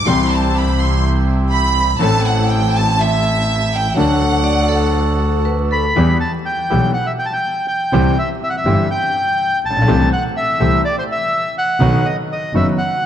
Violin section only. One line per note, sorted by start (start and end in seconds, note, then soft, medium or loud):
0.08 0.32 C6 medium
0.33 0.56 A5 medium
0.57 0.81 B5 medium
0.81 1.05 C6 medium
1.53 1.98 B5 medium
2.02 2.26 A5 loud
2.27 2.50 F#5 medium
2.50 2.74 G5 medium
2.75 2.99 A5 medium
3.01 3.73 E5 medium
3.75 3.98 G5 medium
3.98 5.42 F#5 medium